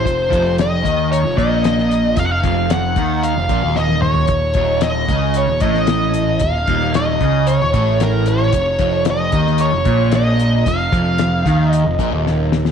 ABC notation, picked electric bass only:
X:1
M:4/4
L:1/16
Q:1/4=113
K:Fphr
V:1 name="Picked electric bass" clef=bass
F,,,2 F,,,4 E,,3 F,,, B,,,6 | F,,,2 F,,,4 E,,3 F,,, B,,, E,,,4- E,,, | E,,,2 E,,,4 ^C,,3 E,,, =A,,,6 | E,,,2 E,,,4 ^C,,3 E,,, =A,,,6 |
F,,,2 F,,,4 E,,3 F,,, B,,,6 | F,,,2 F,,,4 E,,3 F,,, B,,, E,,,4- E,,, |]